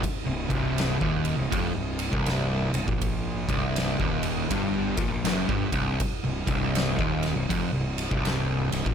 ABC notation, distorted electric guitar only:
X:1
M:4/4
L:1/16
Q:"Swing" 1/4=80
K:Cm
V:1 name="Distorted electric guitar" clef=bass
z C,, C,,3 E,,2 C,, F,, C,,2 C,,3 C,, B,,- | B,,2 C,,3 E,,3 G,,2 B,, B,, ^F,, G,, C,,2 | z C,, C,,3 E,,2 C,, F,, C,,2 C,,3 C,, B,, |]